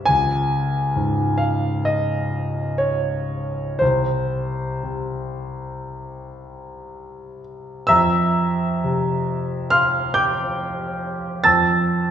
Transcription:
grand piano
0.05 C#2 G#5
0.96 G#2
1.38 F5
1.85 D#5
2.78 C#5
3.79 C2 C5
4.83 C3
7.87 F2 E5 A#5 E6
8.84 C3
9.70 F5 C6 F6
10.14 G5 D6 G6
11.44 F2 A5 E6 A6

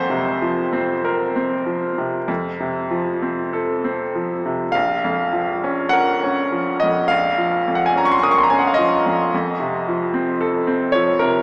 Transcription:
grand piano
Already playing: F2 C5
0.10 C3
0.42 F3
0.73 C4
1.05 A#4
1.36 C4
1.66 F3
1.98 C3
2.28 F2
2.61 C3
2.91 F3
3.22 C4
3.53 A4
3.84 C4
4.15 F3
4.46 C3
4.72 A#1 F5
5.04 F2
5.33 F3
5.64 C#4
5.89 A#4 F#5
6.23 C#4
6.52 F3
6.80 F2 D#5
7.08 A#1 F5
7.38 F3
7.68 F2
7.75 F#5
7.86 G#5
7.95 C#4 A#5
8.05 C#6
8.12 C6
8.19 A#4 C#6
8.23 D#6
8.31 C#6
8.38 C6
8.43 A#5
8.50 C#4 G#5
8.59 F#5
8.67 F5
8.74 D#5
8.78 F3
9.06 F2
9.34 F2
9.60 C3
9.88 F3
10.14 C4
10.41 A4
10.67 C4
10.92 F3 C#5
11.19 C3 A#4

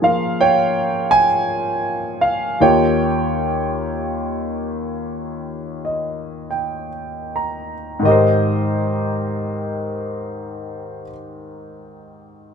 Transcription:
grand piano
Already playing: A#2 F3 C#4 G#4
0.02 F3 A#3 F4 A#4 F5
0.41 C#5 G5
1.11 G#5
2.21 F5
2.60 D#2 D#3 F4 G4 C#5 G5
5.85 D#5
6.50 G5
7.36 A#5
7.99 G#2 D#3
8.05 G4 A#4 D#5
8.11 C5

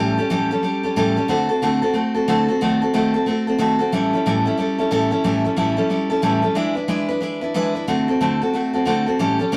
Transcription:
steel-string acoustic guitar
Already playing: A2 E3 G3 C#4 G4
0.00 A4
0.18 G3 C#4 G4 A4
0.30 A2 E3 G3 C#4 G4 A4
0.51 G3 C#4 G4 A4
0.63 G3 C#4 G4 A4
0.83 G3 C#4 G4 A4
0.96 A2 E3 G3 C#4 G4 A4
1.16 G3 C#4 G4 A4
1.28 D3 A3 C4 F#4 A4
1.49 C4 F#4 A4
1.62 D3 A3 C4 F#4 A4
1.82 C4 F#4 A4
1.94 A3 C4 F#4 A4
2.14 C4 F#4 A4
2.28 D3 A3 C4 F#4 A4
2.48 C4 F#4 A4
2.61 D#3 A3 C4 F#4 A4
2.82 C4 F#4 A4
2.94 D#3 A3 C4 F#4 A4
3.14 C4 F#4 A4
3.26 A3 C4 F#4 A4
3.47 C4 F#4 A4
3.58 D#3 A3 C4 F#4 A4
3.79 C4 F#4 A4
3.92 A2 E3 G3 C#4 E4 A4
4.13 G3 C#4 E4 A4
4.26 A2 E3 G3 C#4 E4 A4
4.45 G3 C#4 E4 A4
4.57 G3 C#4 E4 A4
4.78 G3 C#4 E4 A4
4.91 A2 E3 G3 C#4 E4 A4
5.11 G3 C#4 E4 A4
5.24 A2 E3 G3 C#4 E4 A4
5.44 G3 C#4 E4 A4
5.56 A2 E3 G3 C#4 E4 A4
5.77 G3 C#4 E4 A4
5.90 G3 C#4 E4 A4
6.10 G3 C#4 E4 A4
6.22 A2 E3 G3 C#4 E4 A4
6.42 G3 C#4 E4 A4
6.55 E3 G#3 D4 E4 B4
6.75 D4 E4 B4
6.88 E3 G#3 D4 E4 B4
7.09 D4 E4 B4
7.21 G#3 D4 E4 B4
7.41 D4 E4 B4
7.54 E3 G#3 D4 E4 B4
7.75 D4 E4 B4
7.87 D3 A3 C4 F#4 A4
8.08 C4 F#4 A4
8.21 D3 A3 C4 F#4 A4
8.42 C4 F#4 A4
8.53 A3 C4 F#4 A4
8.73 C4 F#4 A4
8.85 D3 A3 C4 F#4 A4
9.06 C4 F#4 A4
9.19 A2 E3 G3 C#4 G4 A4
9.39 G3 C#4 G4 A4
9.52 A2 E3 G3 C#4 G4 A4

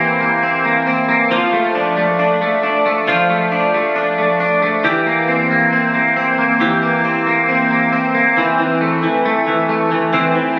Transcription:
clean electric guitar
Already playing: E3 A#3 G4
0.00 C4
0.21 A#3
0.43 C4
0.65 A#3
0.87 C4
1.09 A#3
1.31 F3 F4
1.53 A3
1.75 D4
1.97 A3
2.19 D4
2.41 A3
2.63 D4
2.86 A3
3.07 F3 F4
3.30 A3
3.52 D4
3.74 A3
3.96 D4
4.18 A3
4.40 D4
4.62 A3
4.84 E3 G4
5.06 A#3
5.28 C4
5.51 A#3
5.73 C4
5.94 A#3
6.16 C4
6.38 A#3
6.60 E3 G4
6.83 A#3
7.05 C4
7.27 A#3
7.49 C4
7.71 A#3
7.92 C4
8.15 A#3
8.37 E3 C4
8.59 E3
8.81 A3
9.03 E3
9.25 A3
9.47 E3
9.69 A3
9.91 E3
10.13 E3 C4
10.35 E3

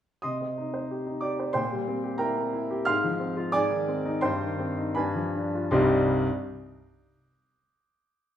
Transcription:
grand piano
0.22 C3 D#5 C6 D#6
0.41 C4
0.58 D#4
0.74 C5
0.91 G4
1.07 D#4
1.21 G4 D5 D6
1.39 C5
1.53 A#2 C5 G5 C6
1.72 G3
1.88 C4
2.04 G4
2.18 E4 A#4 G5 A#5
2.36 C4
2.53 E4
2.71 G4
2.85 G#2 F5 C6 F6
3.04 F3
3.20 C4
3.37 F4
3.52 G#2 D5 G#5 D6
3.70 D#3
3.88 C4
4.05 D#4
4.21 G2 C5 G5 C6
4.41 D#3
4.59 C4
4.77 D#4
4.95 G2 B4 G#5 B5
5.15 F3
5.35 D4
5.54 F4
5.71 C2 G2 G3 C4 D#4 G4 C6

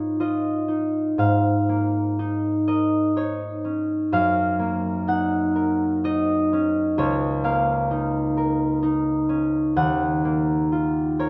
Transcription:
harp
Already playing: G#2 B3 D#4 F4 B4 C#5
0.20 F4 D#5
0.68 D#4
1.18 G#2 F5
1.69 A#3
2.19 D#4
2.68 A#4 D#5
3.16 D#4 C#5
3.65 C#4
4.12 F#2 F5
4.59 A#3
5.07 D#4 F#5
5.56 A#4
6.04 D#4 D#5
6.53 C#4
6.98 C#2 C#5
7.44 A#3 F5
7.91 D#4
8.37 A#4
8.83 D#4
9.29 C#4
9.76 D#2 F#5
10.25 A#3
10.72 F4
11.19 A#4 C#5

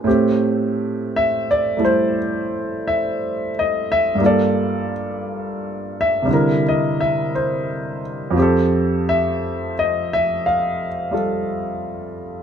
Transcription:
grand piano
0.04 A2 A3 C4 G4
1.16 E5
1.51 D5
1.77 G3 A3 E4 A4
1.85 C5
2.87 E5
3.59 D#5
3.92 E5
4.15 G2 G3
4.20 A#3 F4
4.26 A4 D5
6.01 E5
6.22 C3 G3
6.28 D3 E4
6.33 A#4
6.68 D#5
7.00 E5
7.35 C5
8.31 F2 F3
8.37 C4 G4
8.42 A4
9.09 E5
9.79 D#5
10.13 E5
10.46 F5
11.11 G3 F4 A4

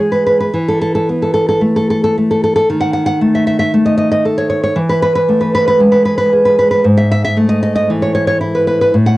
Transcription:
nylon-string guitar
Already playing: E3 G#3 A3
0.00 G#4
0.12 B4
0.26 B4
0.40 B4
0.54 E3
0.68 A4
0.81 A4
0.95 A4
1.09 B3
1.22 A4
1.34 A4
1.49 A4
1.61 A3
1.76 A4
1.90 A4
2.04 A4
2.18 A3
2.31 A4
2.44 A4
2.56 A4
2.70 D#3
2.81 F#5
2.93 F#5
3.06 F#5
3.21 A3
3.35 E5
3.47 E5
3.59 E5
3.74 A3
3.85 D#5
3.97 D#5
4.11 D#5
4.25 A4
4.38 C#5
4.50 C#5
4.63 C#5
4.76 E3
4.89 B4
5.02 B4
5.15 B4
5.28 A3
5.41 B4
5.55 B4
5.68 B4
5.80 G#3
5.92 B4
6.05 B4
6.18 B4
6.33 G#4
6.45 B4
6.59 B4
6.71 B4
6.84 G#2
6.98 E5
7.12 E5
7.25 E5
7.37 A3
7.49 D#5
7.63 D#5
7.76 D#5
7.90 E3
8.02 C#5
8.15 C#5
8.27 C#5
8.41 E4
8.55 B4
8.67 B4
8.81 B4
8.94 A2
9.06 F#5

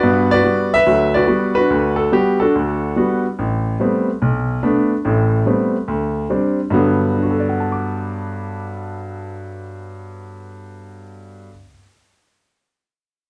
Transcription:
grand piano
Already playing: F#4 B4 D5
0.03 G2 B3
0.31 F#4 B4 D5
0.43 G3 B3 F#4
0.74 B4 E5
0.87 D2 F#3
1.14 F#4 B4 D5
1.28 G3 B3 F#4
1.55 D4 F#4 B4
1.70 D2
1.96 A4
2.12 G3 B3 F#4 G4
2.40 D4 F#4 A4
2.55 D2
2.96 G3 B3 F#4
3.39 A1
3.80 G3 A3 B3 C4
4.22 B1
4.63 A3 B3 D4
5.05 A1 A2
5.46 G3 A3 B3 C4
5.88 D2
6.30 G3 C4 D4
6.70 G2 D3 F#3 B3
7.15 D4
7.22 F#4
7.31 A4
7.40 D5
7.49 F#5
7.60 A5
7.72 D6

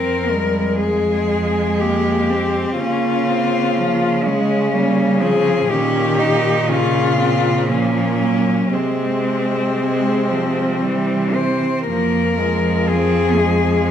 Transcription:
cello
Already playing: F2 C4 A#4
0.30 G3 G#3
0.80 G#3 G#4
1.80 A#3 G4
2.30 C4
2.78 C#3 A#3 C#4 F4
3.30 C4
3.78 F3 A#3
4.24 G#3 C#4
4.73 G3 A#3
5.20 F3 C4 G#4
5.68 A#2 D#3 C#4 G4
6.19 D#4
6.68 C#3 C#4 F4
7.19 C4
7.69 F3 A#3 C#4
8.20 F#3
8.71 C3 G#3 C4
9.77 G#3
10.29 F3
10.82 E3 G3
11.34 C4 C5
11.86 F2 F3 A#3 A#4
12.39 F3 G#3
12.88 C4 G#4
13.39 G#3

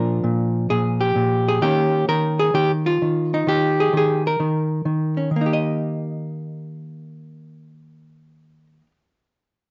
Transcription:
hollow-body jazz guitar
Already playing: A#2 F3 D4 F4 A#4
0.24 A#2
0.70 A#2 G#4
1.01 G4
1.16 A#2
1.48 G#4
1.62 D#3 A#3 C#4 G4
2.08 D#3 A#4
2.39 G#4
2.54 D#3 G4
2.86 F4
3.02 D#3
3.34 D#4
3.47 D#3 G4
3.80 G#4
3.93 D#3 G#4
4.27 A#4
4.40 D#3
4.85 D#3
5.17 C#4
5.31 D#3
5.36 A#3
5.41 D#4
5.46 G4
5.53 D#5

